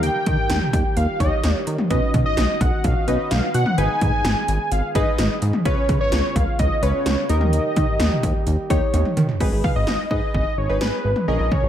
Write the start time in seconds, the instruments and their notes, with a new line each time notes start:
Already playing: brass ensemble D#3 G3 A#3 G4, synth keys D#4 G4 A#4
0.03 analog synth lead G5, closed hi-hat
0.26 analog synth bass D#3, kick, closed hi-hat, mid tom
0.50 analog synth bass D#2, snare, closed hi-hat
0.62 mid tom
0.73 analog synth bass D#2, kick, closed hi-hat
0.91 analog synth lead G5
0.97 analog synth bass D#2, analog synth lead F5, closed hi-hat
1.20 analog synth bass D#2, synth keys D#4 G4 C#5, analog synth lead D#5, kick, closed hi-hat
1.44 analog synth bass D#2, snare, closed hi-hat
1.67 analog synth bass D#3, closed hi-hat
1.78 mid tom
1.90 analog synth bass B1, brass ensemble D#3 B3 C#4 F#4, synth keys C#4 D#4 B4, analog synth lead D#5, kick, closed hi-hat
2.14 analog synth bass B2, kick, closed hi-hat, mid tom
2.26 analog synth lead D#5
2.37 analog synth bass B1, snare, closed hi-hat
2.61 analog synth bass B1, analog synth lead F#5, kick, closed hi-hat
2.84 analog synth bass B1, analog synth lead F5, kick, closed hi-hat
3.08 analog synth bass B1, synth keys C#4 D#4 B4, analog synth lead D#5, closed hi-hat
3.31 analog synth bass B1, analog synth lead F5, snare, closed hi-hat
3.54 analog synth bass B2, analog synth lead F#5, closed hi-hat
3.66 mid tom
3.78 analog synth bass G#1, brass ensemble G#3 G#4, synth keys D#4 G#4 B4, analog synth lead G#5, closed hi-hat
4.01 analog synth bass G#2, kick, closed hi-hat, mid tom
4.25 analog synth bass G#1, snare, closed hi-hat
4.48 analog synth bass G#1, closed hi-hat
4.72 analog synth bass G#1, analog synth lead F5, closed hi-hat
4.95 analog synth bass G#1, synth keys D#4 G#4 B4, analog synth lead D#5, kick, closed hi-hat
5.18 analog synth bass G#1, snare, closed hi-hat
5.42 analog synth bass G#2, closed hi-hat
5.53 mid tom
5.65 analog synth bass C#2, brass ensemble C#3 B3 F4, synth keys C#4 F4 B4, analog synth lead C#5, kick, closed hi-hat
5.89 analog synth bass C#3, kick, closed hi-hat, mid tom
6.01 analog synth lead C#5
6.12 analog synth bass C#2, snare, closed hi-hat
6.36 analog synth bass C#2, analog synth lead F5, kick, closed hi-hat
6.59 analog synth bass C#2, analog synth lead D#5, kick, closed hi-hat
6.83 analog synth bass C#2, synth keys C#4 F4 B4, analog synth lead C#5, closed hi-hat
7.06 analog synth bass C#2, snare, closed hi-hat
7.29 analog synth bass D#2, brass ensemble D#3 G3 A#3 G4, synth keys D#4 G4 A#4, analog synth lead D#5, closed hi-hat
7.41 mid tom
7.53 closed hi-hat
7.76 analog synth bass D#3, kick, closed hi-hat, mid tom
8.00 analog synth bass D#2, snare, closed hi-hat
8.12 mid tom
8.23 analog synth bass D#2, kick, closed hi-hat
8.47 analog synth bass D#2, closed hi-hat
8.70 analog synth bass D#2, synth keys D#4 G4 C#5, kick, closed hi-hat
8.94 analog synth bass D#2, closed hi-hat, high tom
9.05 mid tom
9.17 analog synth bass D#3, closed hi-hat, mid tom
9.29 floor tom
9.40 analog synth bass G#1, synth keys D#4 G#4 B4, kick, crash
9.52 analog synth bass G#1
9.64 analog synth lead F5, kick, mid tom
9.76 analog synth bass G#1, analog synth lead D#5
9.87 analog synth bass G#1, snare
10.11 analog synth bass G#2, synth keys D#4 G#4 B4, analog synth lead D#5, kick
10.34 analog synth bass G#1, analog synth lead D#5, kick
10.58 analog synth bass G#1, analog synth lead C#5
10.69 analog synth bass G#1, synth keys D#4 G#4 B4
10.81 analog synth bass G#1, analog synth lead B4, snare
11.05 analog synth bass G#1
11.16 mid tom
11.28 analog synth bass A#1, synth keys C#4 G#4 A#4, analog synth lead D#5
11.40 analog synth bass A#1
11.51 analog synth lead C#5, kick, mid tom
11.63 analog synth bass A#1